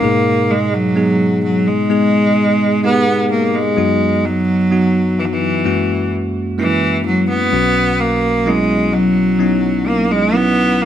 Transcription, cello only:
0.00 0.52 A#3 medium
0.50 0.75 G#3 medium
0.74 1.43 F#3 medium
1.44 1.69 F#3 medium
1.67 2.84 G#3 medium
2.85 3.28 B3 medium
3.31 3.56 A#3 medium
3.55 4.27 G#3 medium
4.25 5.20 F#3 medium
5.19 5.27 E3 medium
5.25 5.35 F#3 soft
5.33 6.13 E3 medium
6.59 7.02 E3 medium
7.06 7.28 F#3 medium
7.29 8.01 B3 medium
8.00 8.48 A#3 medium
8.47 8.95 G#3 medium
8.93 9.89 F#3 medium
9.88 10.13 A#3 medium
10.11 10.36 G#3 medium
10.35 10.83 B3 medium
10.82 10.85 A#3 medium

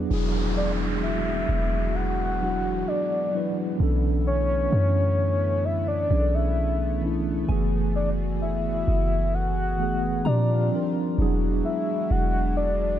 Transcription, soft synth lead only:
0.57 0.71 D5 medium
1.03 1.97 E5 loud
1.95 2.89 F#5 loud
2.88 3.57 D5 medium
4.27 5.66 C#5 loud
5.65 5.87 E5 loud
5.88 6.36 D5 loud
6.34 7.03 E5 loud
7.96 8.10 D5 medium
8.42 9.36 E5 loud
9.34 10.28 F#5 loud
10.26 10.95 D5 medium
11.65 12.12 E5 loud
12.11 12.56 F#5 loud
12.57 12.99 D5 loud

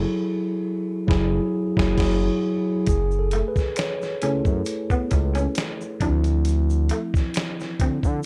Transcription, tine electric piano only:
0.00 1.07 F#3 medium
0.00 1.09 E4 medium
0.00 1.10 G#4 medium
0.00 2.89 A4 medium
1.07 1.39 F#3 medium
1.07 1.39 E4 loud
1.07 1.40 G#4 loud
1.76 1.94 F#3 loud
1.76 1.95 E4 medium
1.76 1.96 G#4 loud
1.97 2.28 F#3 medium
1.97 2.29 E4 medium
1.97 2.30 G#4 loud
2.89 3.19 G#4 medium
3.19 3.49 A4 medium
3.48 3.78 B4 medium
3.78 4.23 C#5 medium
4.22 4.83 A3 medium
4.22 4.83 E4 medium
4.22 4.83 G#4 medium
4.22 5.52 A4 medium
6.01 8.26 F3 medium
6.01 8.26 C4 soft
6.01 8.26 E4 medium

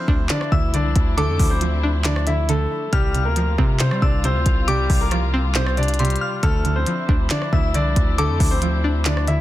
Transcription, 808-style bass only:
0.08 0.29 D2 loud
0.52 0.75 D2 loud
0.74 0.95 C2 loud
0.96 1.30 D2 loud
1.28 1.39 F2 loud
1.39 2.67 D2 loud
2.93 3.27 C2 loud
3.26 3.57 D2 loud
3.58 3.93 C3 loud
3.91 4.02 G3 loud
4.02 4.37 C2 loud
4.35 4.45 D2 loud
4.46 4.88 C2 loud
4.90 6.17 C2 loud
6.43 6.85 D2 loud
7.09 7.30 D2 loud
7.53 7.76 D2 loud
7.74 7.95 C2 loud
7.96 8.31 D2 loud
8.29 8.40 F2 loud
8.40 9.41 D2 loud

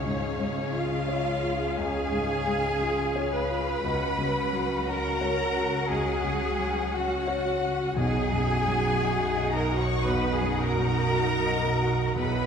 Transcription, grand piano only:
0.00 1.74 C#2 medium
0.05 0.60 G#2 medium
0.40 0.95 G#3 soft
0.74 1.29 F4 soft
1.09 1.64 C#5 soft
1.42 1.98 F4 soft
1.77 3.80 C#2 medium
2.11 2.67 G#2 soft
2.46 3.01 G#3 soft
2.81 3.36 F4 soft
3.16 3.70 C#5 medium
3.50 3.84 F4 soft
3.84 5.86 C#2 medium
4.18 4.73 C#3 medium
4.52 5.07 F#3 soft
4.87 5.42 F#4 soft
5.21 5.76 C#5 soft
5.56 6.11 F#4 medium
5.90 7.93 C#2 medium
6.24 6.79 C#3 soft
6.59 7.14 F#3 soft
6.93 7.49 F#4 medium
7.28 7.83 C#5 medium
7.61 7.97 F#4 medium
7.97 10.02 B1 medium
8.32 8.88 F#2 soft
8.67 9.23 F#3 soft
9.02 9.57 F#4 medium
9.37 9.93 D#5 medium
9.71 10.27 F#4 soft
10.06 12.12 B1 medium
10.41 10.97 F#2 soft
10.76 11.32 F#3 soft
11.11 11.67 F#4 medium
11.46 12.02 D#5 medium
11.81 12.16 F#4 medium
12.16 12.46 B1 medium

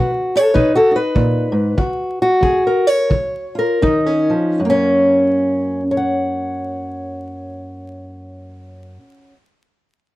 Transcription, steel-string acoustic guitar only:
0.00 0.50 B2 medium
0.00 0.37 F#4 soft
0.00 0.11 B4 loud
0.36 0.54 A4 medium
0.36 0.75 C#5 medium
0.54 1.11 B2 medium
0.54 0.75 D#4 medium
0.54 0.75 B4 medium
0.75 0.96 F#4 medium
0.75 0.95 A4 medium
0.91 1.75 D#4 soft
0.96 1.78 B4 medium
1.15 1.52 A#2 medium
1.52 1.77 G#2 medium
1.78 2.38 F#2 medium
1.78 2.21 F#4 soft
2.22 2.87 F#4 medium
2.41 3.05 F#2 medium
2.41 2.65 G#4 medium
2.67 3.12 A#4 medium
2.87 4.34 C#5 medium
3.10 3.77 C#3 medium
3.55 3.82 F4 soft
3.55 4.06 A#4 medium
3.82 4.30 D#3 medium
3.82 4.60 D#4 medium
4.06 4.60 C#4 medium
4.30 4.61 F3 medium
4.60 8.97 F#2 medium
4.65 9.02 A#3 medium
4.70 5.82 C#4 medium
5.91 9.33 C#5 medium
5.97 9.36 F#5 medium

